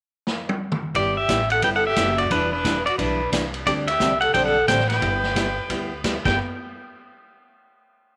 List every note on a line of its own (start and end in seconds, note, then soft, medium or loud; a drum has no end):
0.27 snare medium
0.49 high tom medium
0.72 mid tom medium
0.95 1.22 G1 medium
0.95 1.16 G3 medium
0.95 1.16 B3 medium
0.95 1.16 E4 medium
0.95 1.17 G4 medium
0.95 1.15 G4 medium
0.95 1.17 D5 medium
0.95 kick soft
0.95 ride medium
1.17 1.48 G4 medium
1.17 1.48 E5 medium
1.29 1.58 A1 medium
1.29 1.40 G3 medium
1.29 1.40 B3 medium
1.29 1.40 E4 medium
1.29 1.41 G4 medium
1.29 kick soft
1.29 snare medium
1.29 hi-hat pedal medium
1.29 ride medium
1.50 1.62 A4 medium
1.50 1.64 F#5 medium
1.50 ride soft
1.62 1.91 G1 medium
1.62 1.84 G3 soft
1.62 1.84 B3 medium
1.62 1.85 E4 medium
1.62 1.85 G4 medium
1.62 1.68 B4 medium
1.62 1.69 G5 loud
1.62 kick soft
1.62 ride medium
1.75 1.88 A4 medium
1.75 1.86 F#5 medium
1.86 2.18 G4 medium
1.86 2.19 E5 medium
1.96 2.25 F#1 medium
1.96 2.08 G3 medium
1.96 2.08 B3 medium
1.96 2.09 E4 medium
1.96 2.09 G4 medium
1.96 kick soft
1.96 snare medium
1.96 hi-hat pedal medium
1.96 ride medium
2.18 2.33 F#4 medium
2.18 2.31 D5 medium
2.18 ride soft
2.31 2.85 E1 medium
2.31 2.52 E3 medium
2.31 2.52 G3 medium
2.31 2.51 D4 medium
2.31 2.52 D4 medium
2.31 2.53 E4 medium
2.31 2.52 B4 medium
2.31 2.53 B4 medium
2.31 kick soft
2.31 ride medium
2.52 2.84 D4 medium
2.52 2.86 B4 medium
2.64 2.76 E3 medium
2.64 2.76 G3 medium
2.64 2.76 D4 medium
2.64 2.77 E4 medium
2.64 2.77 B4 medium
2.64 kick soft
2.64 snare medium
2.64 hi-hat pedal medium
2.64 ride medium
2.86 2.98 F#4 medium
2.86 2.98 D5 medium
2.86 ride soft
2.98 3.27 B1 medium
2.98 3.20 E3 medium
2.98 3.20 G3 medium
2.98 3.20 D4 medium
2.98 3.31 D4 medium
2.98 3.20 E4 medium
2.98 3.30 B4 medium
2.98 3.20 B4 medium
2.98 kick soft
2.98 ride medium
3.32 3.61 C2 medium
3.32 3.44 E3 medium
3.32 3.44 G3 medium
3.32 3.44 D4 medium
3.32 3.44 E4 medium
3.32 3.44 B4 medium
3.32 kick soft
3.32 snare medium
3.32 hi-hat pedal medium
3.32 ride medium
3.54 ride soft
3.66 3.94 D2 medium
3.66 3.88 D3 medium
3.66 3.88 G3 medium
3.66 3.88 C4 medium
3.66 3.89 D4 medium
3.66 3.76 G4 medium
3.66 3.89 G4 medium
3.66 3.72 D5 loud
3.66 kick soft
3.66 ride medium
3.88 4.19 G4 medium
3.88 4.19 E5 medium
3.88 ride medium
4.00 4.29 C2 medium
4.00 4.12 D3 medium
4.00 4.12 G3 medium
4.00 4.12 C4 medium
4.00 4.12 D4 medium
4.00 4.12 G4 medium
4.00 kick soft
4.00 snare medium
4.00 hi-hat pedal medium
4.21 4.33 A4 medium
4.21 4.33 F#5 medium
4.21 ride soft
4.34 4.63 B1 medium
4.34 4.55 D3 medium
4.34 4.56 G3 medium
4.34 4.56 C4 medium
4.34 4.56 D4 medium
4.34 4.56 G4 medium
4.34 4.47 C5 medium
4.34 4.45 G5 loud
4.34 kick soft
4.34 ride medium
4.45 4.68 A4 medium
4.45 4.68 F#5 medium
4.68 4.97 A1 medium
4.68 4.79 D3 medium
4.68 4.80 G3 medium
4.68 4.80 C4 medium
4.68 4.80 D4 medium
4.68 4.80 G4 medium
4.68 4.88 C5 medium
4.68 4.88 G5 loud
4.68 kick soft
4.68 snare medium
4.68 hi-hat pedal medium
4.68 ride medium
4.79 snare soft
4.88 6.00 B4 medium
4.88 6.00 G5 medium
4.88 snare soft
4.88 ride soft
5.01 5.56 G1 medium
5.01 5.23 G3 medium
5.01 5.23 B3 medium
5.01 5.23 E4 medium
5.01 5.24 G4 medium
5.01 kick soft
5.01 ride medium
5.24 snare soft
5.35 5.47 G3 medium
5.35 5.47 B3 medium
5.35 5.47 E4 medium
5.35 5.48 G4 medium
5.35 kick soft
5.35 snare medium
5.35 hi-hat pedal medium
5.35 ride medium
5.70 6.14 D2 medium
5.70 5.91 G3 medium
5.70 5.92 B3 medium
5.70 5.92 E4 medium
5.70 5.92 G4 medium
5.70 kick soft
5.70 ride medium
6.04 6.16 G3 medium
6.04 6.16 B3 medium
6.04 6.16 E4 medium
6.04 6.16 G4 medium
6.04 kick soft
6.04 snare medium
6.04 hi-hat pedal medium
6.04 ride medium
6.25 6.37 G1 medium
6.25 6.36 G3 medium
6.25 6.37 B3 medium
6.25 6.36 B3 medium
6.25 6.36 E4 medium
6.25 6.37 G4 medium
6.25 6.37 G5 medium
6.25 kick medium
6.25 snare medium
6.25 crash medium